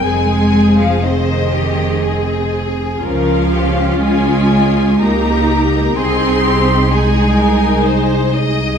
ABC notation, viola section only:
X:1
M:3/4
L:1/8
Q:1/4=61
K:Ab
V:1 name="Viola section"
[CA]2 [CA]4 | [DF]4 [EG]2 | [EA]2 [EA]4 |]